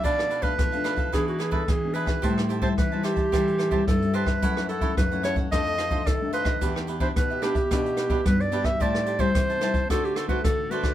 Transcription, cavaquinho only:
\new Staff \with { instrumentName = "Cavaquinho" } { \time 4/4 \key a \dorian \tempo 4 = 110 <d' a' b' f''>8 <d' a' b' f''>16 <d' a' b' f''>16 r16 <a' b' f''>16 <d' a' b' f''>16 <a' b' f''>16 <d' gis' b' e''>8 <d' gis' b' e''>16 <d' gis' b' e''>16 r8 <d' gis' b' e''>16 <gis' b' e''>16 | <g' c'' e'' a''>8 <g' c'' e'' a''>16 <g' c'' e'' a''>16 r16 <c'' e'' a''>16 <g' c'' e'' a''>16 <c'' e'' a''>16 <g' c'' e'' a''>8 <g' c'' e'' a''>16 <g' c'' e'' a''>16 r8 <g' c'' e'' a''>16 <c'' e''>16 | <e' a' cis'' fis''>8 <e' a' cis'' fis''>16 <e' a' cis'' fis''>16 r16 <a' cis'' fis''>16 <e' a' cis'' fis''>16 <a' cis'' fis''>16 <f' a' c'' ees''>8 <f' a' c'' ees''>16 <f' a' c'' ees''>16 r8 <f' a' c'' ees''>16 <a' c'' ees''>16 | <d' g' b' e''>8 <d' g' b' e''>16 <d' g' b' e''>16 r16 <g' b' e''>16 <d' g' b' e''>16 <g' b' e''>16 <d' g' b' e''>8 <d' g' b' e''>16 <d' g' b' e''>16 r8 <d' g' b' e''>16 <g' b' e''>16 |
<g' c'' e'' a''>8 <g' c'' e'' a''>16 <g' c'' e'' a''>16 r16 <c'' e'' a''>16 <g' c'' e'' a''>16 <c'' e'' a''>16 <fis' a' c'' d''>8 <fis' a' c'' d''>16 <fis' a' c'' d''>16 r8 <fis' a' c'' d''>16 <a' c'' d''>16 | }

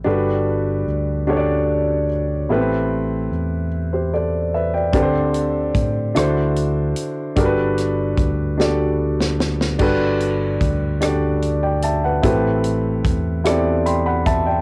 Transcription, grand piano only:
<<
  \new Staff \with { instrumentName = "Grand piano" } { \time 6/8 \key g \major \tempo 4. = 49 << { r2. | r4. r16 <g' c''>16 <a' d''>8 <b' e''>16 <d'' g''>16~ | <d'' g''>16 r2 r8. | r2. |
r2 r16 <d'' g''>16 <e'' a''>16 <b' fis''>16~ | <b' fis''>16 r4. r16 <g'' b'' c'''>16 <fis'' b''>16 <e'' a''>16 <d'' g''>16 | } \\ { <d' fis' g' a' b'>4 r8 <d' fis' g' a' cis'' d''>4 r8 | <b c' e' g' a' b'>4 r2 | <c' d' g' a' b' c''>4 r8 <d' e' fis' a' c''>4 r8 | <d' fis' g' a' bes' b'>4 r8 <d' fis' g' a' d''>4 r8 |
<d' fis' g' a' b'>4 r8 <d' fis' g' a' d''>4 r8 | <c' e' g' a' b'>4 r8 <b c' e' g' a' d''>4 r8 | } >> }
  \new Staff \with { instrumentName = "Grand piano" } { \clef bass \time 6/8 \key g \major g,4. r4. | a,4. r4. | d4. d4. | g,4. r4. |
g,4. r4. | a,4. r4. | }
>>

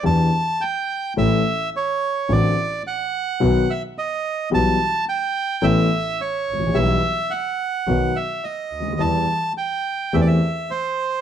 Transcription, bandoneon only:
\new Staff \with { instrumentName = "Bandoneon" } { \time 4/4 \key e \minor \tempo 4 = 107 a''4 g''4 e''4 cis''4 | d''4 fis''4. e''8 dis''4 | a''4 g''4 e''4 cis''4 | e''4 fis''4. e''8 dis''4 |
a''4 g''4 e''32 d''32 e''8. c''4 | }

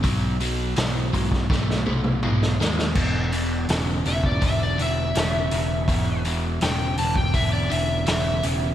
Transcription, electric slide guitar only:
\new Staff \with { instrumentName = "Electric slide guitar" } { \time 4/4 \key b \phrygian \tempo 4 = 82 r1 | r4. e''16 d''16 e''16 d''16 e''4.~ | e''8 r8 g''8 a''16 g''16 e''16 d''16 e''8 e''8 r8 | }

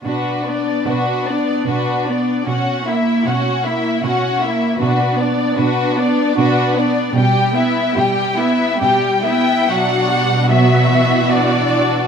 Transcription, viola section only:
\new Staff \with { instrumentName = "Viola section" } { \time 3/4 \key b \minor \tempo 4 = 75 << { r2. | r2. | r2. | r2. |
d'4 b4 d'4 | } \\ { d'8 b8 d'8 b8 d'8 b8 | cis'8 ais8 cis'8 ais8 cis'8 ais8 | d'8 b8 d'8 b8 d'8 b8 | g8 b8 g8 b8 g8 b8 |
fis8 g8 fis8 e4. | } >> }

